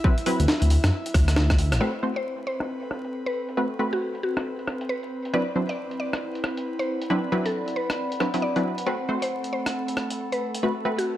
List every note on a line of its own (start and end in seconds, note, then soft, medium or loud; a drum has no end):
0.00 1.82 E4 medium
0.00 1.82 E5 medium
0.04 0.14 F#3 medium
0.04 0.14 C4 medium
0.04 0.14 E4 medium
0.04 0.14 B4 loud
0.04 kick loud
0.18 closed hi-hat soft
0.26 1.79 F#3 loud
0.26 1.79 C4 medium
0.26 1.79 E4 medium
0.26 1.79 B4 loud
0.26 open hi-hat loud
0.40 0.46 D2 loud
0.40 closed hi-hat medium
0.48 snare loud
0.62 0.77 D2 loud
0.62 closed hi-hat medium
0.70 open hi-hat loud
0.84 0.90 F#2 medium
0.84 cross-stick medium
0.84 snare medium
0.84 closed hi-hat medium
1.06 closed hi-hat medium
1.14 1.73 D2 medium
1.14 kick loud
1.14 cross-stick medium
1.14 open hi-hat loud
1.28 cross-stick medium
1.28 closed hi-hat medium
1.36 cross-stick medium
1.36 snare loud
1.50 kick loud
1.50 cross-stick medium
1.50 closed hi-hat soft
1.58 open hi-hat loud
1.72 1.78 A1 medium
1.72 cross-stick medium
1.72 closed hi-hat medium
1.80 1.90 A3 medium
1.80 8.87 C4 medium
1.80 1.90 C4 medium
1.80 11.17 C4 medium
1.80 1.90 F#4 medium
1.80 8.87 B4 medium
1.80 1.90 B4 loud
1.80 2.02 C5 medium
1.80 crash medium
2.01 2.12 A3 medium
2.01 2.12 C4 medium
2.01 2.12 F#4 medium
2.01 5.81 A4 medium
2.01 2.12 C5 medium
2.16 2.36 C5 medium
2.16 closed hi-hat medium
2.38 closed hi-hat soft
2.47 2.75 C5 medium
2.60 11.17 B5 medium
2.60 cross-stick medium
2.60 closed hi-hat medium
2.82 closed hi-hat soft
2.91 cross-stick medium
3.05 closed hi-hat medium
3.26 3.47 B4 medium
3.26 closed hi-hat soft
3.31 11.17 F#5 medium
3.49 closed hi-hat medium
3.57 3.67 A3 medium
3.57 3.67 C4 medium
3.57 3.67 F#4 medium
3.57 3.67 B4 medium
3.79 5.10 A3 medium
3.79 5.10 C4 medium
3.79 5.10 F#4 medium
3.79 5.10 B4 loud
3.93 4.13 F#4 medium
3.93 closed hi-hat medium
4.15 closed hi-hat soft
4.23 4.44 F#4 medium
4.37 cross-stick medium
4.37 closed hi-hat medium
4.59 closed hi-hat soft
4.68 cross-stick medium
4.81 closed hi-hat medium
4.89 5.18 B4 medium
5.03 closed hi-hat soft
5.25 closed hi-hat medium
5.33 5.43 F#3 medium
5.33 5.43 C4 medium
5.33 5.43 D4 medium
5.33 5.43 E4 medium
5.33 5.43 B4 loud
5.33 5.54 D5 medium
5.41 10.19 E4 medium
5.56 5.65 F#3 medium
5.56 5.65 C4 medium
5.56 5.65 D4 medium
5.56 5.65 E4 medium
5.56 5.65 C5 medium
5.69 5.89 D5 medium
5.69 closed hi-hat medium
5.91 closed hi-hat soft
6.00 6.28 D5 medium
6.13 cross-stick medium
6.13 closed hi-hat medium
6.35 closed hi-hat soft
6.41 10.17 D5 medium
6.41 cross-stick medium
6.57 closed hi-hat medium
6.79 7.00 C5 medium
6.79 closed hi-hat soft
7.02 closed hi-hat medium
7.10 7.20 F#3 medium
7.10 7.20 C4 medium
7.10 7.20 D4 medium
7.10 7.20 E4 medium
7.10 7.20 B4 loud
7.32 8.19 F#3 medium
7.32 8.19 C4 medium
7.32 8.19 D4 medium
7.32 8.19 E4 medium
7.32 8.19 B4 loud
7.45 7.66 A4 medium
7.45 closed hi-hat medium
7.68 closed hi-hat soft
7.76 7.97 B4 medium
7.90 cross-stick medium
7.90 closed hi-hat medium
8.12 closed hi-hat soft
8.20 8.30 F#3 medium
8.20 8.30 C4 medium
8.20 8.30 D4 medium
8.20 8.30 E4 medium
8.20 8.30 B4 medium
8.20 cross-stick medium
8.34 8.44 F#3 medium
8.34 8.44 C4 medium
8.34 8.44 D4 medium
8.34 8.44 E4 medium
8.34 8.44 B4 medium
8.34 closed hi-hat medium
8.42 8.71 D5 medium
8.56 8.84 F#3 medium
8.56 8.84 C4 medium
8.56 8.84 D4 medium
8.56 8.84 E4 medium
8.56 8.84 B4 medium
8.56 closed hi-hat soft
8.78 closed hi-hat medium
8.86 8.96 A3 medium
8.86 11.17 A3 medium
8.86 8.96 C4 medium
8.86 8.96 F#4 medium
8.86 11.17 A4 medium
8.86 8.96 B4 loud
8.86 9.07 C5 medium
9.09 9.18 A3 medium
9.09 9.18 C4 medium
9.09 9.18 F#4 medium
9.09 9.18 C5 medium
9.22 11.17 A4 medium
9.22 9.42 C5 medium
9.22 closed hi-hat medium
9.44 closed hi-hat medium
9.53 9.81 C5 medium
9.66 cross-stick medium
9.66 closed hi-hat medium
9.88 closed hi-hat soft
9.97 cross-stick medium
10.10 closed hi-hat medium
10.32 10.53 B4 medium
10.32 closed hi-hat soft
10.54 closed hi-hat medium
10.63 10.73 A3 medium
10.63 10.73 C4 medium
10.63 10.73 F#4 medium
10.63 10.73 B4 loud
10.85 11.17 A3 medium
10.85 11.17 C4 medium
10.85 11.17 F#4 medium
10.85 11.17 B4 loud
10.98 11.17 F#4 medium
10.98 closed hi-hat medium